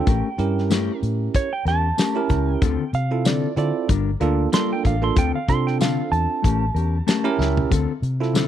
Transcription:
Already playing: G5
0.06 A1 A3 C#4 G4 A#4, kick, closed hi-hat
0.38 G2 C#4 E4 G4 A#4, closed hi-hat
0.58 snare
0.70 A3 C#4 G4 A#4, snare, closed hi-hat, tambourine
1.03 A2, closed hi-hat
1.34 C#5, kick, closed hi-hat
1.53 G5
1.65 E2 C#4 G4 A#4 A5, snare, closed hi-hat
1.98 A3 C#4 G4 A#4, snare, closed hi-hat, tambourine
2.15 C#4 E4 G4 A#4
2.29 C#2 C#4 G4 A#4, kick, closed hi-hat
2.54 G5
2.62 D2 D3 C4 F4 A4, kick, closed hi-hat
2.93 C3 F5, closed hi-hat
3.11 C4 E4 F4 A4
3.25 D3 C4 F4 A4 D5, snare, closed hi-hat, tambourine
3.56 D3 C4 E4 F4 A4 D5, closed hi-hat
3.88 G1 G3 D4 F4 A#4, kick, closed hi-hat
4.20 D2 A#3 D4 F4 A4 A#4, closed hi-hat
4.52 G3 A#3 D4 F4 A4 A#4 C6, snare, closed hi-hat, tambourine
4.73 G5
4.84 A1 D4 F4 A#4 F5, kick, closed hi-hat
5.02 A#3 D4 F4 A4 C6
5.15 D2 D3 C4 F4 A4 G5, kick, closed hi-hat
5.35 F5
5.48 C3 C4 D4 F4 A4 C6, kick, closed hi-hat
5.67 G5, snare
5.79 D3 C4 F4 A4 F5, snare, closed hi-hat, tambourine
6.12 E2 A5, closed hi-hat
6.43 A1 A3 C#4 G4 A#4, kick, closed hi-hat
6.74 E2 C#4 G4 A#4, closed hi-hat
7.07 A3 C#4 G4 A#4 A5, snare, closed hi-hat, tambourine
7.24 C#4 E4 G4 A#4
7.38 C#2 C#4 G4 A#4 E5, snare
7.57 floor tom
7.70 D2 D3 C4 F4 A4, kick, closed hi-hat
8.02 C3, closed hi-hat
8.20 C4 E4 F4 A4, snare
8.33 D3 C4 F4 A4, snare, closed hi-hat, tambourine

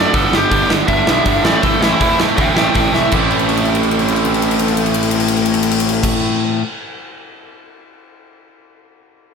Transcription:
Already playing: D3 F#3 A3 D4 D5
0.12 G1 G2 D3 G3 B3 D4 A4, kick, open hi-hat
0.33 G1 G2 D3 G3 B3 D4 G4, snare
0.50 G1 G2 D3 G3 B3 D4, kick, open hi-hat
0.68 G1 G2 D3 G3 B3 D4, snare
0.86 G1 G2 D3 G3 B3 D4 E5, kick, open hi-hat
1.06 B1 G2 D3 G3 B3 D4, snare
1.25 G1 G2 D3 G3 B3 D4, kick, open hi-hat
1.43 A1 A2 E3 A3 C4 E4 D5, snare
1.63 G1 A2 E3 A3 C4 E4 A4, kick, open hi-hat
1.81 A1 A2 E3 A3 C4 E4, snare
2.00 E2 A2 E3 A3 C4 E4, kick, open hi-hat
2.19 A2 E3 A3 C4 E4, snare
2.37 D2 A2 E3 A3 C4 E4 E5 G5, kick, open hi-hat
2.54 A1 A2 E3 A3 C4 E5 G5, snare
2.59 E4
2.75 A1 A2 E3 A3 C4 E4 E5 G5, kick, open hi-hat
2.92 C2 A2 E3 A3 C4 E4 E5, snare
3.12 A1 A2 E3 A3 C4, kick, crash
3.16 E4
3.31 crash
3.39 ride
3.49 crash
3.57 ride
3.65 crash
3.75 ride
3.83 crash
3.91 ride
3.99 crash
4.08 ride
4.16 crash
4.25 ride
4.34 crash
4.42 ride
4.51 crash
4.59 ride
4.68 crash
4.77 ride
4.86 crash
4.94 ride
5.03 crash
5.11 ride
5.20 crash
5.28 ride
5.37 crash
5.46 ride
5.54 crash
5.63 ride
5.71 crash
5.80 ride
5.89 crash
6.03 kick, crash

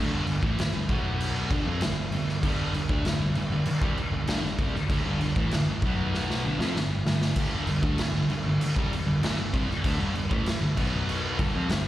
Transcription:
Already playing: D2 D3 A3
0.11 G1 G2 D3
0.27 G1 G2 D3, crash
0.42 A1 A2 E3, kick
0.58 muted distorted electric guitar stroke, muted picked electric bass stroke, snare, crash
0.73 G1 G2 D3
0.89 B1 B2 F#3 B3, kick, crash
1.21 crash
1.51 G1 G2 D3, kick, crash
1.65 F2 F3 C4
1.81 G1 G2 D3, snare, crash
2.12 G1 G2 D3, crash
2.29 snare
2.43 G1 G2 D3 G3, kick, crash
2.74 G1 G2 D3, crash
2.89 D2 D3 A3, kick
3.03 G1 G2 D3, snare, crash
3.19 G1 G2 D3
3.35 G1 G2 D3, crash
3.51 G1 G2 D3
3.65 muted picked electric bass stroke, muted distorted electric guitar stroke, crash
3.81 C2 C3 G3, kick
3.96 muted picked electric bass stroke, muted distorted electric guitar stroke, crash
4.12 G1 G2 D3
4.27 G1 G2 D3, snare, crash
4.43 G1 G2 D3, snare
4.58 C2 C3 G3, kick, crash
4.75 muted picked electric bass stroke, muted distorted electric guitar stroke, snare
4.90 D2 D3 A3, kick, crash
5.04 G1 G2 D3
5.20 G1 G2 D3, crash
5.36 A1 A2 E3, kick
5.51 muted picked electric bass stroke, muted distorted electric guitar stroke, snare, crash
5.67 G1 G2 D3
5.82 B1 B2 F#3, kick, crash
5.87 B3
6.14 snare
6.30 snare
6.44 G1 G2 D3
6.59 F2 F3 C4, snare
6.75 G1 G2 D3, snare
7.05 G1 G2 D3, snare
7.22 snare
7.36 G1 G2 D3, kick, splash, crash
7.40 G3
7.67 G1 G2 D3, crash
7.82 D2 D3 A3, kick
7.98 G1 G2 D3, snare, crash
8.14 G1 G2 D3
8.30 G1 G2 D3, crash
8.44 G1 G2 D3
8.60 muted picked electric bass stroke, muted distorted electric guitar stroke, crash
8.76 C2 C3 G3, kick
8.91 muted picked electric bass stroke, muted distorted electric guitar stroke, crash
9.06 G1 G2 D3
9.23 G1 G2 D3, snare, crash
9.36 G1 G2 D3
9.53 C2 C3 G3, kick, crash
9.67 muted picked electric bass stroke, muted distorted electric guitar stroke, snare
9.84 D2 D3 A3, kick, crash
9.98 G1 G2 D3
10.14 G1 G2 D3, crash
10.30 A1 A2 E3, kick
10.46 muted picked electric bass stroke, muted distorted electric guitar stroke, snare, crash
10.61 G1 G2 D3
10.76 B1 B2 F#3 B3, kick, crash
11.09 crash
11.38 G1 G2 D3, kick, crash
11.54 F2 F3 C4
11.69 G1 G2 D3, snare, crash

